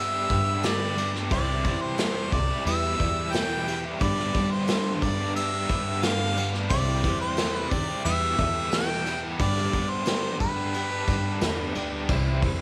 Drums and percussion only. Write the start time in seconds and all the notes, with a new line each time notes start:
0.30 kick, ride
0.63 snare, ride, tambourine
0.98 ride
1.15 snare
1.31 kick, crash
1.65 kick, ride
1.98 snare, ride, tambourine
2.32 kick, ride
2.66 ride
3.00 kick, ride
3.33 snare, ride, tambourine
3.68 ride
4.01 kick, ride
4.19 snare
4.35 kick, ride
4.68 snare, ride, tambourine
5.02 kick, ride
5.36 ride
5.69 kick, ride
6.03 snare, ride, tambourine
6.37 ride
6.54 snare
6.70 kick, ride
7.04 kick, ride
7.37 snare, ride, tambourine
7.71 kick, ride
8.05 ride
8.39 kick, ride
8.72 snare, ride, tambourine
9.06 ride
9.40 kick, ride
9.58 snare
9.73 kick, ride
10.06 snare, ride, tambourine
10.40 kick, ride
10.74 ride
11.08 kick, ride
11.41 snare, ride, tambourine
11.75 ride
12.09 kick, crash
12.42 kick, open hi-hat